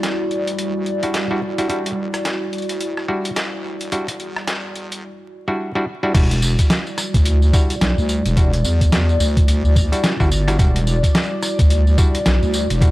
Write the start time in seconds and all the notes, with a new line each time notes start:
Already playing: E2 G3 E4 F#4 D5
0.03 snare, closed hi-hat
0.31 D2, closed hi-hat
0.47 closed hi-hat
0.58 closed hi-hat
0.75 D2
0.86 closed hi-hat
1.03 G3 D4 E4 F#4, closed hi-hat
1.14 snare, closed hi-hat
1.31 G1 G3 D4 E4 F#4
1.58 G3 D4 E4 F#4, closed hi-hat
1.70 E1 G3 D4 E4 F#4, closed hi-hat
1.86 closed hi-hat
2.14 cross-stick, closed hi-hat
2.25 snare, closed hi-hat
2.53 closed hi-hat
2.58 closed hi-hat
2.62 closed hi-hat
2.69 D2, closed hi-hat
2.80 closed hi-hat
2.97 cross-stick
3.08 G3 D4 E4 F#4
3.25 closed hi-hat
3.36 B1, snare, closed hi-hat
3.53 D2
3.81 E1, closed hi-hat
3.92 G3 D4 E4 F#4, closed hi-hat
4.08 closed hi-hat
4.20 E2, closed hi-hat
4.36 cross-stick
4.47 snare, closed hi-hat
4.75 E2, closed hi-hat
4.92 closed hi-hat
5.48 G3 D4 E4 F#4
5.75 G3 D4 E4 F#4
6.03 G3 D4 E4 F#4
6.14 E1 G3 D4 E4 F#4 D5, kick, closed hi-hat, crash, tambourine
6.31 closed hi-hat, tambourine
6.42 tambourine
6.59 kick, closed hi-hat, tambourine
6.70 snare, closed hi-hat, tambourine
6.87 tambourine
6.98 cross-stick, closed hi-hat, tambourine
7.14 D2, kick, closed hi-hat, tambourine
7.25 closed hi-hat, tambourine
7.42 tambourine
7.53 G3 D4 E4 F#4, kick, closed hi-hat, tambourine
7.70 closed hi-hat, tambourine
7.81 B1, snare, closed hi-hat, tambourine
7.98 D2, tambourine
8.09 tambourine
8.26 E1, closed hi-hat, tambourine
8.37 G3 D4 E4 F#4, kick, closed hi-hat, tambourine
8.53 closed hi-hat, tambourine
8.64 E2, tambourine
8.81 kick, closed hi-hat, tambourine
8.92 snare, closed hi-hat, tambourine
9.09 tambourine
9.20 D2, closed hi-hat, tambourine
9.37 kick, closed hi-hat, tambourine
9.48 closed hi-hat, tambourine
9.64 D2, tambourine
9.76 kick, closed hi-hat, tambourine
9.92 G3 D4 E4 F#4, closed hi-hat, tambourine
10.04 snare, closed hi-hat, tambourine
10.20 G1 G3 D4 E4 F#4, kick, tambourine
10.32 tambourine
10.48 G3 D4 E4 F#4, cross-stick, closed hi-hat, tambourine
10.59 E1 G3 D4 E4 F#4, kick, closed hi-hat, tambourine
10.76 closed hi-hat, tambourine
10.87 tambourine
11.03 kick, closed hi-hat, tambourine
11.15 snare, closed hi-hat, tambourine
11.23 tambourine
11.42 cross-stick, closed hi-hat, tambourine
11.59 D2, kick, closed hi-hat, tambourine
11.70 closed hi-hat, tambourine
11.87 tambourine
11.98 G3 D4 E4 F#4, kick, closed hi-hat, tambourine
12.15 closed hi-hat, tambourine
12.26 B1, snare, closed hi-hat, tambourine
12.43 D2, tambourine
12.54 tambourine
12.70 E1, closed hi-hat, tambourine
12.81 G3 D4 E4 F#4, kick, closed hi-hat, tambourine